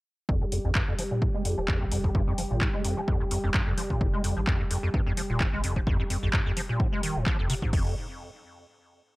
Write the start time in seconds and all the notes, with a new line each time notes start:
0.29 F1 F2 G3 G4, kick
0.41 F2
0.52 F2, open hi-hat
0.65 G#1 F2
0.75 G2, kick, clap
0.88 F2
0.99 F3, open hi-hat
1.11 A#2
1.22 G#2, kick
1.34 G#3
1.45 F2, open hi-hat
1.58 D#1 F3
1.68 F2, kick, clap
1.81 G#1 F2
1.92 F1 F2, open hi-hat
2.04 F2, kick
2.15 F1 G2, kick
2.27 F2
2.38 F3, open hi-hat
2.51 G#1 A#2
2.61 G#2, kick, clap
2.74 G#3
2.85 F2, open hi-hat
2.97 F3
3.08 F2, kick
3.20 F2
3.31 F2, open hi-hat
3.44 D#1 F2
3.54 G2, kick, clap
3.67 F1 F2
3.78 F3, open hi-hat
3.90 A#2, kick
4.01 F1 G#2, kick
4.13 G#3
4.24 F2, open hi-hat
4.37 G#1 F3
4.47 F2, kick, clap
4.60 F2
4.71 F2, open hi-hat
4.83 F2
4.94 G2, kick
5.06 F2
5.17 F3, open hi-hat
5.30 D#1 A#2
5.40 G#2, kick, clap
5.53 G#1 G#3
5.64 F1 F2, open hi-hat
5.76 F3, kick
5.87 F1 F2, kick
6.00 F2
6.10 F2, open hi-hat
6.23 G#1 F2
6.33 G2, kick, clap
6.46 F2
6.57 F3, open hi-hat
6.69 A#2
6.80 G#2, kick
6.93 G#3
7.03 D#3, open hi-hat
7.16 D#1 G#2
7.26 F3, kick, clap
7.39 F1 F2
7.50 C3, open hi-hat
7.62 G#2, kick
7.73 F1 F2, kick, crash